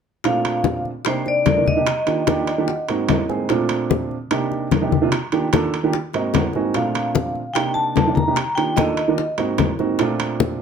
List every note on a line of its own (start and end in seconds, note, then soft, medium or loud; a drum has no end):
0.24 0.89 A#2 medium
0.24 0.90 A3 medium
0.24 0.90 C4 medium
0.24 0.90 D4 medium
0.24 0.90 F4 medium
0.24 0.82 F5 medium
0.24 high bongo medium
0.24 high conga soft
0.24 high timbale medium
0.45 high bongo soft
0.45 high conga soft
0.45 high timbale medium
0.64 high bongo medium
0.64 high conga medium
0.64 low timbale medium
0.85 high conga soft
1.05 1.41 C3 medium
1.05 1.41 A#3 medium
1.05 1.42 D4 medium
1.05 1.42 D#4 medium
1.05 1.42 G4 medium
1.05 1.27 C5 medium
1.05 high bongo medium
1.05 high conga soft
1.05 high timbale medium
1.26 1.69 D5 medium
1.26 high bongo soft
1.26 high conga soft
1.46 high bongo soft
1.46 low bongo medium
1.46 high conga medium
1.46 high timbale medium
1.46 low timbale medium
1.57 1.71 C3 medium
1.57 1.71 A#3 medium
1.57 1.71 D4 medium
1.57 1.71 D#4 medium
1.57 1.71 A#4 medium
1.66 2.85 D#5 medium
1.66 high bongo soft
1.66 high conga medium
1.76 1.86 C3 medium
1.76 1.87 A#3 medium
1.76 1.87 D4 medium
1.76 1.87 D#4 medium
1.76 1.87 G4 medium
1.87 high bongo medium
1.87 high conga soft
1.87 high timbale medium
2.06 2.21 D#3 medium
2.06 2.21 A#3 medium
2.06 2.21 D4 medium
2.06 2.21 F4 medium
2.06 2.21 G4 medium
2.06 high bongo soft
2.06 high conga soft
2.06 high timbale medium
2.27 2.49 D#3 medium
2.27 2.49 A#3 medium
2.27 2.49 D4 medium
2.27 2.49 F4 medium
2.27 2.49 G4 medium
2.27 high bongo medium
2.27 high conga medium
2.27 high timbale medium
2.27 low timbale medium
2.47 2.66 D5 medium
2.47 high timbale medium
2.58 2.68 D#3 medium
2.58 2.68 A#3 medium
2.58 2.68 D4 medium
2.58 2.68 F4 medium
2.58 2.69 G4 medium
2.68 3.06 F#5 medium
2.68 high bongo medium
2.68 high conga soft
2.88 3.17 G#2 medium
2.88 3.17 A#3 medium
2.88 3.17 C4 medium
2.88 3.18 D#4 medium
2.88 3.18 F#4 medium
2.88 high bongo soft
2.88 high conga soft
2.88 high timbale medium
3.09 3.28 D#5 medium
3.09 high bongo soft
3.09 low bongo medium
3.09 high conga medium
3.09 high timbale medium
3.09 low timbale medium
3.29 3.49 G#2 medium
3.29 3.49 A#3 medium
3.29 3.49 C4 medium
3.29 3.50 D#4 medium
3.29 3.50 G#4 medium
3.29 3.48 G#5 medium
3.29 high bongo soft
3.29 high conga soft
3.49 4.15 A#2 medium
3.49 4.15 A3 medium
3.49 4.15 C4 medium
3.49 4.15 D4 medium
3.49 4.15 F4 medium
3.49 high bongo medium
3.49 high conga soft
3.49 high timbale medium
3.69 high bongo soft
3.69 high conga soft
3.69 high timbale medium
3.90 high bongo medium
3.90 high conga medium
3.90 low timbale medium
4.11 high conga soft
4.31 4.66 C3 medium
4.31 4.67 A#3 medium
4.31 4.67 D4 medium
4.31 4.67 D#4 medium
4.31 4.67 G4 medium
4.31 high bongo medium
4.31 high conga soft
4.31 high timbale medium
4.51 high bongo soft
4.51 high conga soft
4.71 high bongo soft
4.71 low bongo medium
4.71 high conga medium
4.71 high timbale medium
4.71 low timbale medium
4.81 4.96 C3 medium
4.81 4.96 A#3 medium
4.81 4.96 D4 medium
4.81 4.96 D#4 medium
4.81 4.96 G4 medium
4.92 high bongo soft
4.92 high conga medium
5.01 5.12 C3 medium
5.01 5.12 A#3 medium
5.01 5.12 D4 medium
5.01 5.12 D#4 medium
5.01 5.12 F4 medium
5.12 high bongo medium
5.12 high conga soft
5.12 high timbale medium
5.32 5.47 D#3 medium
5.32 5.47 A#3 medium
5.32 5.47 D4 medium
5.32 5.47 F4 medium
5.32 5.47 G4 medium
5.32 high bongo soft
5.32 high conga soft
5.32 high timbale medium
5.53 5.74 D#3 medium
5.53 5.74 A#3 medium
5.53 5.74 D4 medium
5.53 5.75 F4 medium
5.53 5.75 A4 medium
5.53 high bongo medium
5.53 high conga medium
5.53 high timbale medium
5.53 low timbale medium
5.74 high timbale medium
5.83 5.93 D#3 medium
5.83 5.94 A#3 medium
5.83 5.94 D4 medium
5.83 5.94 F4 medium
5.83 5.94 G4 medium
5.93 high bongo medium
5.93 high conga soft
6.13 6.42 G#2 medium
6.13 6.42 A#3 medium
6.13 6.43 C4 medium
6.13 6.43 D#4 medium
6.13 6.43 F#4 medium
6.13 6.33 D#5 medium
6.13 high bongo soft
6.13 high conga soft
6.13 high timbale medium
6.34 6.54 F#5 medium
6.34 high bongo soft
6.34 low bongo medium
6.34 high conga medium
6.34 high timbale medium
6.34 low timbale medium
6.53 6.75 G#2 medium
6.53 6.75 A#3 medium
6.53 6.74 C4 medium
6.53 6.75 D#4 medium
6.53 6.76 F#4 medium
6.53 6.74 G#5 medium
6.53 high bongo soft
6.53 high conga soft
6.74 7.40 A#2 medium
6.74 7.40 A3 medium
6.74 7.40 C4 medium
6.74 7.40 D4 medium
6.74 7.41 F4 medium
6.74 7.59 F5 medium
6.74 high bongo medium
6.74 high conga soft
6.74 high timbale medium
6.95 high bongo soft
6.95 high conga soft
6.95 high timbale medium
7.15 high bongo medium
7.15 high conga medium
7.15 low timbale medium
7.35 high conga soft
7.54 7.91 C3 medium
7.54 7.92 A#3 medium
7.54 7.92 D4 medium
7.54 7.92 D#4 medium
7.54 7.92 G4 medium
7.54 7.63 G5 medium
7.54 high bongo medium
7.54 high conga soft
7.54 high timbale medium
7.74 8.17 A5 loud
7.74 high bongo soft
7.74 high conga soft
7.96 high bongo soft
7.96 low bongo medium
7.96 high conga medium
7.96 high timbale medium
7.96 low timbale medium
8.06 8.21 C3 medium
8.06 8.21 A#3 medium
8.06 8.21 D4 medium
8.06 8.21 D#4 medium
8.06 8.21 G4 medium
8.15 8.58 A#5 medium
8.15 high bongo soft
8.15 high conga medium
8.27 8.37 C3 medium
8.27 8.38 A#3 medium
8.27 8.38 D4 medium
8.27 8.38 D#4 medium
8.27 8.38 G4 medium
8.36 high bongo medium
8.36 high conga soft
8.36 high timbale medium
8.55 8.72 D#3 medium
8.55 8.72 A#3 medium
8.55 8.72 D4 medium
8.55 8.72 F4 medium
8.55 8.72 G4 medium
8.55 8.77 G5 medium
8.55 high bongo soft
8.55 high conga soft
8.55 high timbale medium
8.76 8.99 D#3 medium
8.76 8.99 A#3 medium
8.76 8.99 D4 medium
8.76 8.99 F4 medium
8.76 9.00 A4 medium
8.76 9.34 D#5 medium
8.76 high bongo medium
8.76 high conga medium
8.76 high timbale medium
8.76 low timbale medium
8.97 high timbale medium
9.08 9.18 D#3 medium
9.08 9.18 A#3 medium
9.08 9.18 D4 medium
9.08 9.19 F4 medium
9.08 9.19 A#4 medium
9.18 high bongo medium
9.18 high conga soft
9.38 9.67 G#2 medium
9.38 9.67 A#3 medium
9.38 9.67 C4 medium
9.38 9.67 D#4 medium
9.38 9.67 F#4 medium
9.38 high bongo soft
9.38 high conga soft
9.38 high timbale medium
9.58 high bongo soft
9.58 low bongo medium
9.58 high conga medium
9.58 high timbale medium
9.58 low timbale medium
9.79 9.99 G#2 medium
9.79 9.99 A#3 medium
9.79 9.98 C4 medium
9.79 10.00 D#4 medium
9.79 10.00 F#4 medium
9.79 high bongo soft
9.79 high conga soft
9.99 10.62 A#2 medium
9.99 10.62 A3 medium
9.99 10.62 C4 medium
9.99 10.62 D4 medium
9.99 10.62 F4 loud
9.99 high bongo medium
9.99 high conga soft
9.99 high timbale medium
10.19 high bongo soft
10.19 high conga soft
10.19 high timbale medium
10.40 high bongo medium
10.40 high conga medium
10.40 low timbale medium